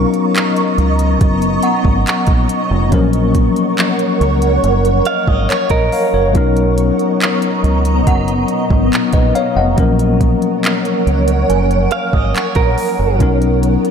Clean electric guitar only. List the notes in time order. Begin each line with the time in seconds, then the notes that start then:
5.07 F5
5.28 D#5
5.49 C#5
5.71 A#4
11.92 F5
12.14 D#5
12.35 C#5
12.56 A#4